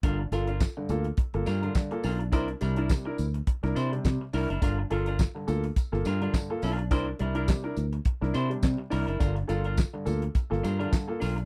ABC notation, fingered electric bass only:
X:1
M:4/4
L:1/16
Q:"Swing 16ths" 1/4=105
K:Gdor
V:1 name="Fingered electric bass" clef=bass
G,,,2 G,,,3 z D,,2 z G,,, G,,2 z2 =B,,,2 | C,,2 C,,3 z D,,2 z C,, C,2 C, z C,, ^F,,, | G,,,2 G,,,3 z D,,2 z G,,, G,,2 z2 =B,,,2 | C,,2 C,,3 z D,,2 z C,, C,2 C, z C,, ^F,,, |
G,,,2 G,,,3 z D,,2 z G,,, G,,2 z2 =B,,,2 |]